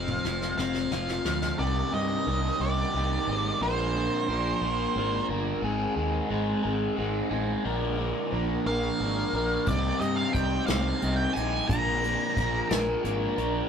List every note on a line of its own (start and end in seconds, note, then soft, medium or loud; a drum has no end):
0.00 0.17 F1 medium
0.00 0.24 F3 medium
0.00 0.58 C4 medium
0.00 0.56 F5 medium
0.08 mid tom soft
0.25 0.51 F1 medium
0.25 1.24 F3 medium
0.25 snare medium
0.42 snare medium
0.58 0.84 F1 medium
0.58 1.60 C4 medium
0.58 1.59 F5 loud
0.58 snare medium
0.75 snare medium
0.91 1.18 F1 medium
0.91 1.59 F4 medium
0.91 snare medium
1.09 snare medium
1.25 1.51 D2 medium
1.25 1.59 F3 medium
1.25 snare medium
1.42 snare medium
1.59 1.81 C2 medium
1.59 2.26 C3 medium
1.59 2.25 D#3 medium
1.59 1.93 G3 medium
1.59 1.92 D#4 medium
1.59 1.91 G4 medium
1.59 1.93 D5 medium
1.92 2.15 G2 medium
1.92 2.26 G3 medium
1.92 2.27 D#4 medium
1.92 2.28 G4 medium
1.92 2.63 D#5 loud
2.26 2.49 C2 medium
2.26 2.93 D#3 medium
2.26 2.62 G3 medium
2.26 2.61 D#4 medium
2.26 2.59 G4 medium
2.60 2.82 C2 medium
2.60 2.94 G3 medium
2.60 2.95 D#4 medium
2.60 2.95 G4 medium
2.60 3.62 D5 medium
2.94 3.16 C2 medium
2.94 3.59 D#3 medium
2.94 3.30 G3 medium
2.94 3.28 D#4 medium
2.94 3.27 G4 medium
3.27 3.50 G#1 medium
3.27 3.61 G3 medium
3.27 3.60 D#4 medium
3.27 3.60 G4 medium
3.61 4.06 A#1 medium
3.61 4.28 A#2 medium
3.61 4.29 D3 medium
3.61 3.96 F3 medium
3.61 3.96 A#3 loud
3.61 3.94 D4 medium
3.61 3.95 A#4 loud
3.61 5.26 C5 medium
3.95 4.27 F3 medium
3.95 4.29 A#3 medium
3.95 4.29 D4 medium
3.95 4.30 A#4 medium
4.28 4.51 A#1 medium
4.28 4.63 F3 medium
4.28 4.64 A#3 medium
4.28 4.62 D4 medium
4.28 4.61 A#4 medium
4.61 4.84 A#1 medium
4.61 4.95 F3 medium
4.61 4.97 A#3 medium
4.61 4.97 D4 medium
4.61 4.99 A#4 medium
4.96 5.18 G#1 medium
4.96 5.30 F3 medium
4.96 5.30 A#3 medium
4.96 5.29 D4 medium
4.96 5.29 A#4 medium
5.29 5.51 G1 medium
5.29 5.62 F3 medium
5.29 5.64 A#3 medium
5.29 5.61 D4 medium
5.29 5.64 A#4 medium
5.62 5.85 G#1 medium
5.62 6.30 G#2 medium
5.62 6.30 D#3 medium
5.62 5.97 G#3 medium
5.62 5.97 C4 loud
5.62 5.96 D#4 medium
5.62 5.95 G#4 loud
5.96 6.19 D#2 medium
5.96 6.29 G#3 medium
5.96 6.30 C4 medium
5.96 6.30 D#4 medium
5.96 6.31 G#4 medium
6.30 6.53 G#1 medium
6.30 6.64 G#3 medium
6.30 6.64 C4 medium
6.30 6.62 D#4 medium
6.30 6.61 G#4 medium
6.62 6.87 G#1 medium
6.62 6.95 G#3 medium
6.62 6.97 C4 medium
6.62 6.97 D#4 medium
6.62 6.98 G#4 medium
6.96 7.20 G#1 medium
6.96 7.31 G#3 medium
6.96 7.30 C4 medium
6.96 7.29 D#4 medium
6.96 7.28 G#4 medium
7.29 7.53 A1 medium
7.29 7.63 G#3 medium
7.29 7.65 C4 medium
7.29 7.63 D#4 medium
7.29 7.62 G#4 medium
7.64 8.10 A#1 medium
7.64 8.32 A#2 medium
7.64 8.32 D3 medium
7.64 7.99 F3 medium
7.64 7.98 A#3 medium
7.64 7.98 D4 medium
7.64 7.96 A#4 loud
7.97 8.30 F3 medium
7.97 8.31 A#3 medium
7.97 8.33 D4 medium
7.97 8.33 A#4 medium
8.31 8.55 A#1 medium
8.31 8.68 F3 medium
8.31 8.67 A#3 medium
8.31 8.67 D4 medium
8.31 8.65 A#4 medium
8.66 8.88 A#1 medium
8.66 8.99 F3 soft
8.66 9.01 A#3 medium
8.66 9.02 D4 medium
8.66 9.01 A#4 medium
8.66 9.71 F5 medium
9.00 9.22 G#1 medium
9.00 9.35 F3 medium
9.00 9.34 A#3 medium
9.00 9.34 D4 medium
9.00 9.33 A#4 medium
9.33 9.56 A#1 medium
9.33 9.67 F3 soft
9.33 9.66 A#3 medium
9.33 9.69 D4 medium
9.33 9.66 A#4 medium
9.66 9.90 C2 medium
9.66 10.35 C3 medium
9.66 10.32 G3 medium
9.66 10.02 C4 medium
9.66 10.00 D#4 medium
9.66 9.99 G4 medium
9.66 10.02 D5 medium
9.66 kick loud
9.66 closed hi-hat medium
9.99 10.23 G2 medium
9.99 10.34 C4 soft
9.99 10.34 D#4 medium
9.99 10.35 G4 medium
9.99 10.16 D#5 medium
9.99 closed hi-hat medium
10.16 10.33 F5 medium
10.33 10.57 C2 medium
10.33 11.00 G3 medium
10.33 10.69 C4 medium
10.33 10.68 D#4 medium
10.33 10.66 G4 medium
10.33 10.66 G5 medium
10.33 kick medium
10.33 closed hi-hat medium
10.66 10.91 C2 medium
10.66 11.02 C4 medium
10.66 11.02 D#4 medium
10.66 11.02 G4 medium
10.66 11.16 F5 medium
10.66 snare loud
10.66 closed hi-hat medium
11.02 11.25 C2 medium
11.02 11.67 G3 medium
11.02 11.37 C4 medium
11.02 11.35 D#4 medium
11.02 11.34 G4 medium
11.02 closed hi-hat medium
11.16 11.33 G5 medium
11.33 11.59 A#1 medium
11.33 11.68 D#4 medium
11.33 11.67 G4 medium
11.33 11.69 G#5 medium
11.33 closed hi-hat medium
11.37 11.71 C4 soft
11.68 12.14 A#1 medium
11.68 12.36 A#2 medium
11.68 12.37 D3 medium
11.68 12.04 F3 medium
11.68 12.03 A#3 medium
11.68 12.02 D4 medium
11.68 12.77 A#5 loud
11.68 kick loud
11.68 closed hi-hat medium
11.72 12.01 A#4 medium
12.02 12.35 F3 medium
12.02 12.37 A#3 medium
12.02 12.37 D4 medium
12.02 12.38 A#4 medium
12.02 closed hi-hat medium
12.36 12.59 A#1 medium
12.36 12.70 F3 medium
12.36 12.70 A#3 medium
12.36 12.69 D4 medium
12.36 12.69 A#4 medium
12.36 kick medium
12.36 closed hi-hat medium
12.69 12.93 A#1 medium
12.69 13.02 F3 medium
12.69 13.04 A#3 medium
12.69 13.04 D4 medium
12.69 13.05 A#4 medium
12.69 snare loud
12.69 closed hi-hat medium
12.77 13.33 G#5 loud
13.03 13.27 G#1 medium
13.03 13.38 F3 medium
13.03 13.38 A#3 medium
13.03 13.36 D4 medium
13.03 13.36 A#4 medium
13.03 closed hi-hat medium
13.37 13.60 A#1 medium
13.37 13.69 F3 medium
13.37 13.69 A#3 medium
13.37 13.69 D4 medium
13.37 13.69 A#4 medium
13.37 closed hi-hat medium